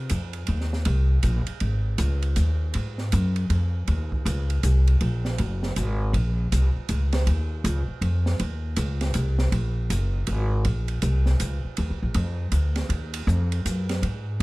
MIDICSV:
0, 0, Header, 1, 4, 480
1, 0, Start_track
1, 0, Tempo, 376176
1, 628, Time_signature, 3, 2, 24, 8
1, 18411, End_track
2, 0, Start_track
2, 0, Title_t, "Upright bass"
2, 0, Program_c, 0, 32
2, 135, Note_on_c, 0, 41, 74
2, 607, Note_off_c, 0, 41, 0
2, 617, Note_on_c, 0, 39, 80
2, 1088, Note_off_c, 0, 39, 0
2, 1096, Note_on_c, 0, 36, 87
2, 1568, Note_off_c, 0, 36, 0
2, 1573, Note_on_c, 0, 34, 80
2, 1864, Note_off_c, 0, 34, 0
2, 2056, Note_on_c, 0, 32, 76
2, 2524, Note_off_c, 0, 32, 0
2, 2531, Note_on_c, 0, 37, 88
2, 3006, Note_off_c, 0, 37, 0
2, 3017, Note_on_c, 0, 39, 76
2, 3489, Note_off_c, 0, 39, 0
2, 3507, Note_on_c, 0, 44, 84
2, 3975, Note_off_c, 0, 44, 0
2, 3992, Note_on_c, 0, 42, 94
2, 4457, Note_off_c, 0, 42, 0
2, 4463, Note_on_c, 0, 41, 82
2, 4933, Note_off_c, 0, 41, 0
2, 4950, Note_on_c, 0, 39, 83
2, 5417, Note_off_c, 0, 39, 0
2, 5428, Note_on_c, 0, 37, 94
2, 5897, Note_off_c, 0, 37, 0
2, 5913, Note_on_c, 0, 36, 79
2, 6379, Note_off_c, 0, 36, 0
2, 6392, Note_on_c, 0, 34, 82
2, 6859, Note_off_c, 0, 34, 0
2, 6882, Note_on_c, 0, 30, 87
2, 7345, Note_off_c, 0, 30, 0
2, 7355, Note_on_c, 0, 32, 76
2, 7817, Note_off_c, 0, 32, 0
2, 7825, Note_on_c, 0, 34, 77
2, 8296, Note_off_c, 0, 34, 0
2, 8322, Note_on_c, 0, 36, 90
2, 8602, Note_off_c, 0, 36, 0
2, 8793, Note_on_c, 0, 37, 80
2, 9260, Note_off_c, 0, 37, 0
2, 9272, Note_on_c, 0, 39, 83
2, 9740, Note_off_c, 0, 39, 0
2, 9752, Note_on_c, 0, 37, 94
2, 10038, Note_off_c, 0, 37, 0
2, 10226, Note_on_c, 0, 41, 81
2, 10697, Note_off_c, 0, 41, 0
2, 10716, Note_on_c, 0, 39, 82
2, 11182, Note_off_c, 0, 39, 0
2, 11192, Note_on_c, 0, 37, 88
2, 11660, Note_off_c, 0, 37, 0
2, 11677, Note_on_c, 0, 36, 80
2, 12140, Note_off_c, 0, 36, 0
2, 12147, Note_on_c, 0, 34, 78
2, 12617, Note_off_c, 0, 34, 0
2, 12634, Note_on_c, 0, 30, 83
2, 13101, Note_off_c, 0, 30, 0
2, 13112, Note_on_c, 0, 32, 77
2, 13579, Note_off_c, 0, 32, 0
2, 13592, Note_on_c, 0, 34, 73
2, 14059, Note_off_c, 0, 34, 0
2, 14069, Note_on_c, 0, 36, 85
2, 14537, Note_off_c, 0, 36, 0
2, 14545, Note_on_c, 0, 37, 79
2, 14832, Note_off_c, 0, 37, 0
2, 15034, Note_on_c, 0, 39, 80
2, 15187, Note_on_c, 0, 37, 50
2, 15206, Note_off_c, 0, 39, 0
2, 15336, Note_off_c, 0, 37, 0
2, 15344, Note_on_c, 0, 34, 65
2, 15493, Note_off_c, 0, 34, 0
2, 15501, Note_on_c, 0, 41, 93
2, 15965, Note_off_c, 0, 41, 0
2, 15973, Note_on_c, 0, 38, 83
2, 16442, Note_off_c, 0, 38, 0
2, 16450, Note_on_c, 0, 39, 84
2, 16925, Note_off_c, 0, 39, 0
2, 16934, Note_on_c, 0, 41, 91
2, 17406, Note_off_c, 0, 41, 0
2, 17423, Note_on_c, 0, 42, 82
2, 17890, Note_off_c, 0, 42, 0
2, 17896, Note_on_c, 0, 44, 74
2, 18366, Note_off_c, 0, 44, 0
2, 18411, End_track
3, 0, Start_track
3, 0, Title_t, "Muted upright bass strokes"
3, 1878, Note_on_c, 9, 29, 34
3, 2006, Note_off_c, 9, 29, 0
3, 8629, Note_on_c, 9, 29, 37
3, 8756, Note_off_c, 9, 29, 0
3, 10057, Note_on_c, 9, 29, 37
3, 10185, Note_off_c, 9, 29, 0
3, 14859, Note_on_c, 9, 29, 39
3, 14986, Note_off_c, 9, 29, 0
3, 18411, End_track
4, 0, Start_track
4, 0, Title_t, "Drums"
4, 120, Note_on_c, 9, 44, 47
4, 120, Note_on_c, 9, 51, 62
4, 248, Note_off_c, 9, 44, 0
4, 248, Note_off_c, 9, 51, 0
4, 424, Note_on_c, 9, 51, 42
4, 551, Note_off_c, 9, 51, 0
4, 595, Note_on_c, 9, 51, 57
4, 723, Note_off_c, 9, 51, 0
4, 774, Note_on_c, 9, 38, 28
4, 901, Note_off_c, 9, 38, 0
4, 933, Note_on_c, 9, 38, 39
4, 1060, Note_off_c, 9, 38, 0
4, 1086, Note_on_c, 9, 51, 56
4, 1213, Note_off_c, 9, 51, 0
4, 1565, Note_on_c, 9, 44, 47
4, 1565, Note_on_c, 9, 51, 63
4, 1693, Note_off_c, 9, 44, 0
4, 1693, Note_off_c, 9, 51, 0
4, 1870, Note_on_c, 9, 51, 45
4, 1997, Note_off_c, 9, 51, 0
4, 2044, Note_on_c, 9, 51, 53
4, 2172, Note_off_c, 9, 51, 0
4, 2527, Note_on_c, 9, 44, 59
4, 2527, Note_on_c, 9, 51, 66
4, 2655, Note_off_c, 9, 44, 0
4, 2655, Note_off_c, 9, 51, 0
4, 2838, Note_on_c, 9, 51, 41
4, 2966, Note_off_c, 9, 51, 0
4, 3010, Note_on_c, 9, 44, 54
4, 3010, Note_on_c, 9, 51, 56
4, 3137, Note_off_c, 9, 44, 0
4, 3137, Note_off_c, 9, 51, 0
4, 3491, Note_on_c, 9, 51, 57
4, 3619, Note_off_c, 9, 51, 0
4, 3804, Note_on_c, 9, 38, 32
4, 3932, Note_off_c, 9, 38, 0
4, 3981, Note_on_c, 9, 44, 48
4, 3981, Note_on_c, 9, 51, 65
4, 4109, Note_off_c, 9, 44, 0
4, 4109, Note_off_c, 9, 51, 0
4, 4285, Note_on_c, 9, 51, 41
4, 4413, Note_off_c, 9, 51, 0
4, 4465, Note_on_c, 9, 51, 52
4, 4593, Note_off_c, 9, 51, 0
4, 4944, Note_on_c, 9, 51, 55
4, 5072, Note_off_c, 9, 51, 0
4, 5259, Note_on_c, 9, 36, 49
4, 5387, Note_off_c, 9, 36, 0
4, 5439, Note_on_c, 9, 44, 56
4, 5439, Note_on_c, 9, 51, 63
4, 5566, Note_off_c, 9, 44, 0
4, 5566, Note_off_c, 9, 51, 0
4, 5739, Note_on_c, 9, 51, 43
4, 5867, Note_off_c, 9, 51, 0
4, 5910, Note_on_c, 9, 44, 57
4, 5910, Note_on_c, 9, 51, 61
4, 6038, Note_off_c, 9, 44, 0
4, 6038, Note_off_c, 9, 51, 0
4, 6220, Note_on_c, 9, 51, 43
4, 6348, Note_off_c, 9, 51, 0
4, 6387, Note_on_c, 9, 51, 56
4, 6515, Note_off_c, 9, 51, 0
4, 6698, Note_on_c, 9, 38, 43
4, 6826, Note_off_c, 9, 38, 0
4, 6869, Note_on_c, 9, 51, 53
4, 6996, Note_off_c, 9, 51, 0
4, 7182, Note_on_c, 9, 38, 45
4, 7310, Note_off_c, 9, 38, 0
4, 7352, Note_on_c, 9, 44, 54
4, 7352, Note_on_c, 9, 51, 55
4, 7480, Note_off_c, 9, 44, 0
4, 7480, Note_off_c, 9, 51, 0
4, 7836, Note_on_c, 9, 51, 55
4, 7964, Note_off_c, 9, 51, 0
4, 8321, Note_on_c, 9, 44, 54
4, 8321, Note_on_c, 9, 51, 62
4, 8449, Note_off_c, 9, 44, 0
4, 8449, Note_off_c, 9, 51, 0
4, 8787, Note_on_c, 9, 44, 46
4, 8787, Note_on_c, 9, 51, 62
4, 8914, Note_off_c, 9, 44, 0
4, 8914, Note_off_c, 9, 51, 0
4, 9091, Note_on_c, 9, 51, 43
4, 9098, Note_on_c, 9, 38, 60
4, 9219, Note_off_c, 9, 51, 0
4, 9225, Note_off_c, 9, 38, 0
4, 9275, Note_on_c, 9, 51, 56
4, 9402, Note_off_c, 9, 51, 0
4, 9756, Note_on_c, 9, 44, 54
4, 9756, Note_on_c, 9, 51, 61
4, 9883, Note_off_c, 9, 44, 0
4, 9883, Note_off_c, 9, 51, 0
4, 10231, Note_on_c, 9, 51, 49
4, 10359, Note_off_c, 9, 51, 0
4, 10540, Note_on_c, 9, 38, 50
4, 10668, Note_off_c, 9, 38, 0
4, 10711, Note_on_c, 9, 51, 56
4, 10839, Note_off_c, 9, 51, 0
4, 11183, Note_on_c, 9, 44, 48
4, 11183, Note_on_c, 9, 51, 66
4, 11310, Note_off_c, 9, 44, 0
4, 11310, Note_off_c, 9, 51, 0
4, 11494, Note_on_c, 9, 51, 42
4, 11500, Note_on_c, 9, 38, 46
4, 11621, Note_off_c, 9, 51, 0
4, 11628, Note_off_c, 9, 38, 0
4, 11660, Note_on_c, 9, 44, 55
4, 11660, Note_on_c, 9, 51, 58
4, 11787, Note_off_c, 9, 44, 0
4, 11787, Note_off_c, 9, 51, 0
4, 11977, Note_on_c, 9, 38, 54
4, 12104, Note_off_c, 9, 38, 0
4, 12149, Note_on_c, 9, 51, 56
4, 12277, Note_off_c, 9, 51, 0
4, 12634, Note_on_c, 9, 44, 61
4, 12634, Note_on_c, 9, 51, 63
4, 12762, Note_off_c, 9, 44, 0
4, 12762, Note_off_c, 9, 51, 0
4, 13101, Note_on_c, 9, 51, 58
4, 13228, Note_off_c, 9, 51, 0
4, 13584, Note_on_c, 9, 51, 56
4, 13712, Note_off_c, 9, 51, 0
4, 13884, Note_on_c, 9, 51, 43
4, 14011, Note_off_c, 9, 51, 0
4, 14059, Note_on_c, 9, 44, 48
4, 14059, Note_on_c, 9, 51, 65
4, 14187, Note_off_c, 9, 44, 0
4, 14187, Note_off_c, 9, 51, 0
4, 14366, Note_on_c, 9, 38, 41
4, 14494, Note_off_c, 9, 38, 0
4, 14543, Note_on_c, 9, 44, 58
4, 14543, Note_on_c, 9, 51, 62
4, 14670, Note_off_c, 9, 44, 0
4, 14670, Note_off_c, 9, 51, 0
4, 15015, Note_on_c, 9, 51, 57
4, 15143, Note_off_c, 9, 51, 0
4, 15495, Note_on_c, 9, 51, 60
4, 15622, Note_off_c, 9, 51, 0
4, 15971, Note_on_c, 9, 44, 46
4, 15971, Note_on_c, 9, 51, 58
4, 16099, Note_off_c, 9, 44, 0
4, 16099, Note_off_c, 9, 51, 0
4, 16276, Note_on_c, 9, 51, 43
4, 16283, Note_on_c, 9, 38, 41
4, 16404, Note_off_c, 9, 51, 0
4, 16410, Note_off_c, 9, 38, 0
4, 16457, Note_on_c, 9, 51, 57
4, 16585, Note_off_c, 9, 51, 0
4, 16762, Note_on_c, 9, 51, 67
4, 16889, Note_off_c, 9, 51, 0
4, 16945, Note_on_c, 9, 44, 50
4, 17072, Note_off_c, 9, 44, 0
4, 17250, Note_on_c, 9, 51, 43
4, 17378, Note_off_c, 9, 51, 0
4, 17425, Note_on_c, 9, 44, 47
4, 17425, Note_on_c, 9, 51, 66
4, 17553, Note_off_c, 9, 44, 0
4, 17553, Note_off_c, 9, 51, 0
4, 17726, Note_on_c, 9, 51, 45
4, 17733, Note_on_c, 9, 38, 48
4, 17854, Note_off_c, 9, 51, 0
4, 17860, Note_off_c, 9, 38, 0
4, 17900, Note_on_c, 9, 51, 51
4, 18028, Note_off_c, 9, 51, 0
4, 18411, End_track
0, 0, End_of_file